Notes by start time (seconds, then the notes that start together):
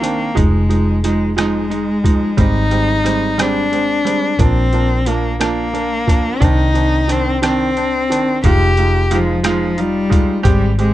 Already playing: C2 A#3
0.01 D#3 C4 D4, closed hi-hat
0.35 F1 F3 G#3 D#4, kick, closed hi-hat
0.40 G#3
0.69 F3 G#3 D#4, closed hi-hat
1.04 F3 G#3 D#4, cross-stick, closed hi-hat
1.36 F3 G#3 D#4, cross-stick, closed hi-hat
1.70 G#3 D#4, closed hi-hat
2.04 F3 G#3 D#4, kick, closed hi-hat
2.37 G#1 G3 G#3 C4 D#4, kick, closed hi-hat
2.71 G3 G#3 C4, closed hi-hat
3.04 G3 G#3 C4, cross-stick, closed hi-hat
3.38 G3 G#3 C4 D4, cross-stick, closed hi-hat
3.72 G#3 C4, closed hi-hat
4.05 G3 G#3 C4, closed hi-hat
4.39 A#1 F3 A#3 C4 D4, kick, closed hi-hat
4.73 F3 A#3 D4, closed hi-hat
5.06 F3 A#3 D4, closed hi-hat
5.39 F3 A#3 D4, cross-stick, closed hi-hat
5.73 A#3 D4, closed hi-hat
6.07 F3 A#3 D4, kick, closed hi-hat
6.40 C2 D#3 C4 D4 D#4, kick, closed hi-hat
6.74 D#3 C4 D4, closed hi-hat
7.08 D#3 C4 D4, cross-stick, closed hi-hat
7.42 D#3 C4 D4, cross-stick, closed hi-hat
7.76 C4 D4, closed hi-hat
8.10 D#3 C4 D4, closed hi-hat
8.44 F1 G#3 D#4 F4 G4, kick, closed hi-hat
8.77 G#3 D#4 F4, closed hi-hat
9.11 F3 G#3 D#4 F4, cross-stick, closed hi-hat
9.43 F3 G#3 D#4 F4, cross-stick, closed hi-hat
9.77 G3 D#4 F4, closed hi-hat
10.09 G#3 D#4 F4, kick, closed hi-hat
10.43 G#1 G3 G#3 C4 G4, kick, closed hi-hat
10.78 G#3 C4 G4, closed hi-hat